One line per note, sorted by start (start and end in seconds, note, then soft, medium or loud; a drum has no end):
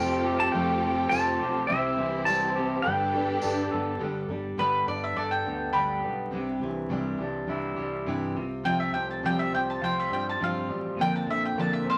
0.00 0.47 F1 loud
0.00 0.81 F3 medium
0.00 0.25 A3 medium
0.00 0.25 C4 medium
0.00 0.54 C4 medium
0.00 1.67 C4 medium
0.00 0.26 F4 medium
0.00 1.67 F4 medium
0.00 0.24 G4 medium
0.00 0.44 G4 medium
0.00 1.67 G4 medium
0.00 0.44 A4 medium
0.00 1.67 A4 medium
0.00 0.45 F5 medium
0.00 0.42 G5 medium
0.25 0.53 C4 medium
0.25 0.54 F4 soft
0.25 0.54 G4 medium
0.40 0.52 A5 medium
0.52 1.05 F1 loud
0.52 0.82 F3 medium
0.52 0.83 A3 medium
0.52 0.83 C4 medium
0.52 0.83 F4 medium
0.52 1.01 G4 medium
0.52 0.81 G4 medium
0.52 1.02 A4 medium
0.52 1.02 F5 medium
0.52 1.09 G5 medium
0.82 1.69 F3 medium
0.82 1.10 C4 soft
0.82 1.12 F4 soft
0.82 1.11 G4 medium
1.09 1.37 F1 medium
1.09 1.40 A3 medium
1.09 1.40 C4 medium
1.09 1.40 F4 medium
1.09 1.59 G4 medium
1.09 1.39 G4 medium
1.09 1.59 A4 medium
1.09 1.59 F5 medium
1.09 1.70 A5 loud
1.09 tambourine medium
1.40 1.66 B1 medium
1.40 1.69 C4 soft
1.40 1.70 F4 medium
1.40 1.69 G4 medium
1.67 1.95 C2 medium
1.67 1.98 C3 medium
1.67 1.98 G3 medium
1.67 2.83 C4 medium
1.67 1.98 C4 medium
1.67 2.83 E4 medium
1.67 1.99 E4 medium
1.67 2.16 G4 medium
1.67 2.83 G4 medium
1.67 1.97 G4 medium
1.67 2.16 C5 medium
1.67 2.83 C5 medium
1.67 2.27 E5 medium
1.67 2.16 E5 medium
1.97 2.24 C2 loud
1.97 2.84 E3 medium
1.97 2.26 C4 soft
1.97 2.28 E4 medium
1.97 2.27 G4 medium
2.25 2.78 C2 medium
2.25 2.55 G3 medium
2.25 2.56 C4 medium
2.25 2.57 E4 medium
2.25 2.74 G4 medium
2.25 2.74 C5 soft
2.25 2.74 D5 medium
2.25 2.82 A5 loud
2.25 tambourine medium
2.30 2.55 G4 medium
2.56 2.86 C4 soft
2.56 2.85 E4 soft
2.56 2.85 G4 soft
2.82 3.36 G1 medium
2.82 3.13 G2 medium
2.82 3.14 D3 medium
2.82 3.14 G3 medium
2.82 3.99 D4 medium
2.82 3.99 G4 medium
2.82 3.31 A4 medium
2.82 4.00 A4 medium
2.82 3.32 B4 medium
2.82 3.99 B4 medium
2.82 3.66 G5 medium
2.82 3.32 G5 medium
2.86 3.14 B3 medium
2.86 3.14 D4 medium
2.86 3.14 A4 medium
3.13 3.99 G3 medium
3.13 3.43 D4 medium
3.13 3.43 A4 medium
3.17 3.43 G3 soft
3.17 3.44 B3 medium
3.42 3.68 G1 medium
3.42 3.72 G3 medium
3.42 3.72 B3 medium
3.42 3.90 A4 medium
3.42 3.90 B4 medium
3.42 3.91 G5 medium
3.42 tambourine loud
3.46 3.71 D4 medium
3.46 3.70 A4 medium
3.71 3.97 G1 medium
3.71 3.99 G3 medium
3.71 4.00 B3 medium
3.71 4.00 D4 medium
3.71 4.00 A4 medium
3.99 4.27 G1 medium
3.99 4.29 G2 medium
3.99 4.29 D3 medium
3.99 4.29 G3 medium
3.99 4.29 B3 medium
3.99 4.29 D4 medium
3.99 4.27 A4 medium
4.28 4.56 G1 medium
4.28 4.57 G3 soft
4.28 4.57 B3 medium
4.28 4.58 D4 medium
4.28 4.58 A4 medium
4.57 4.84 G1 medium
4.57 4.86 G2 medium
4.57 4.87 D3 medium
4.57 4.87 G3 medium
4.57 4.87 B3 medium
4.57 4.86 D4 medium
4.57 4.84 A4 medium
4.57 4.87 B4 medium
4.86 5.13 G1 medium
4.86 5.13 G3 soft
4.86 5.14 B3 soft
4.86 5.15 D4 soft
4.86 5.15 A4 soft
4.86 5.01 D5 medium
5.04 5.16 E5 medium
5.14 5.43 G1 medium
5.14 5.44 G3 medium
5.14 5.45 B3 medium
5.14 5.45 D4 medium
5.14 5.43 A4 medium
5.14 5.30 D5 medium
5.31 5.72 G5 medium
5.44 5.72 D2 medium
5.44 5.74 G3 soft
5.44 5.74 B3 soft
5.44 5.74 D4 soft
5.44 5.73 A4 medium
5.73 6.01 D2 medium
5.73 6.03 G2 medium
5.73 6.03 D3 medium
5.73 6.04 G3 medium
5.73 6.02 B3 medium
5.73 6.02 D4 medium
5.73 6.00 A4 medium
5.73 7.44 G5 medium
5.73 7.44 B5 medium
6.01 6.31 B1 medium
6.01 6.31 G3 soft
6.01 6.32 B3 soft
6.01 6.31 D4 soft
6.01 6.31 A4 medium
6.31 6.59 C2 medium
6.31 6.60 C3 medium
6.31 6.61 G3 medium
6.31 6.61 D4 medium
6.31 6.62 E4 medium
6.31 6.60 G4 medium
6.61 6.88 C2 medium
6.61 8.06 E3 medium
6.61 6.90 D4 soft
6.61 6.90 E4 medium
6.61 6.90 G4 medium
6.89 7.17 C2 medium
6.89 7.19 C3 medium
6.89 7.19 G3 loud
6.89 7.20 D4 medium
6.89 7.20 E4 medium
6.89 7.18 G4 medium
7.18 7.46 C2 medium
7.18 7.48 E4 medium
7.18 7.48 G4 medium
7.23 7.47 D4 soft
7.47 7.75 C2 medium
7.47 7.77 G3 medium
7.47 7.77 D4 medium
7.47 7.77 E4 medium
7.47 7.75 G4 medium
7.76 8.04 C2 medium
7.76 8.36 G3 medium
7.76 8.06 D4 soft
7.76 8.07 E4 soft
7.76 8.06 G4 medium
8.06 8.34 G2 medium
8.06 8.36 C3 medium
8.06 8.36 E3 medium
8.06 8.36 G3 medium
8.06 8.36 D4 medium
8.06 8.36 E4 medium
8.06 8.33 G4 loud
8.35 8.63 C2 medium
8.35 8.64 C3 medium
8.35 8.64 C4 soft
8.35 8.64 F4 medium
8.35 8.64 G4 medium
8.63 8.93 C2 medium
8.63 8.93 C3 medium
8.63 8.94 F3 medium
8.63 8.94 C4 medium
8.63 8.94 F4 medium
8.63 8.93 G4 medium
8.63 8.79 G5 loud
8.80 8.93 E5 medium
8.94 9.22 C2 medium
8.94 10.38 F3 medium
8.94 9.24 F4 soft
8.94 9.23 G4 medium
8.94 9.07 G5 medium
9.11 9.23 A5 medium
9.23 9.50 C2 medium
9.23 9.52 C3 medium
9.23 9.53 F3 medium
9.23 10.09 G3 medium
9.23 9.53 C4 medium
9.23 9.53 F4 medium
9.23 9.51 G4 medium
9.23 9.38 G5 loud
9.39 9.52 E5 medium
9.52 9.80 C2 medium
9.52 10.98 C4 medium
9.52 9.81 F4 soft
9.52 9.81 G4 soft
9.52 9.67 G5 medium
9.70 9.82 A5 medium
9.81 10.09 C2 medium
9.81 10.10 F3 medium
9.81 10.11 C4 medium
9.81 10.11 F4 medium
9.81 10.09 G4 medium
9.81 9.96 G5 medium
10.00 10.11 E5 medium
10.10 10.38 G2 medium
10.10 10.67 G3 medium
10.10 10.40 C4 soft
10.10 10.41 F4 soft
10.10 10.40 G4 soft
10.10 10.25 G5 medium
10.29 10.41 A5 medium
10.40 10.67 G2 medium
10.40 10.69 C3 medium
10.40 10.69 F3 medium
10.40 10.70 C4 medium
10.40 10.69 F4 medium
10.40 10.68 G4 medium
10.40 10.70 F5 medium
10.68 10.96 A1 medium
10.68 10.98 G3 medium
10.68 10.99 C4 soft
10.68 10.99 F4 soft
10.68 10.98 G4 medium
10.98 11.25 A#1 medium
10.98 11.27 A#2 medium
10.98 11.28 D3 medium
10.98 11.28 F3 medium
10.98 11.28 C4 medium
10.98 11.28 D4 medium
10.98 11.27 A#4 medium
10.98 11.13 G5 loud
11.16 11.28 A5 medium
11.26 11.54 A#1 medium
11.26 11.98 D3 medium
11.26 11.57 C4 soft
11.26 11.57 D4 soft
11.26 11.57 A#4 medium
11.30 11.57 F3 soft
11.30 11.43 E5 medium
11.45 11.57 G5 medium
11.56 11.83 A#1 medium
11.56 11.86 A#2 medium
11.56 11.86 D3 medium
11.56 11.86 F3 medium
11.56 11.98 A#3 medium
11.56 11.87 C4 medium
11.56 11.87 D4 medium
11.60 11.85 A#4 medium
11.60 11.72 A5 medium
11.73 11.86 E5 medium
11.86 11.98 A#1 medium
11.86 11.98 F3 soft
11.86 11.98 C4 soft
11.86 11.98 D4 soft
11.86 11.98 A#4 soft
11.86 11.98 C5 medium
11.90 11.98 F5 medium